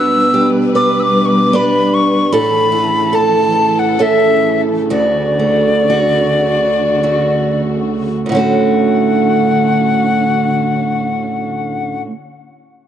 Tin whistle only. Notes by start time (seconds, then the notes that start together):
Already playing: E6
0.76 D6
1.00 D6 E6
1.26 C#6 D6
1.56 B5
1.94 C#6
2.32 B5
3.15 A5
3.79 F#5
4.02 E5
4.91 D5
8.30 F#5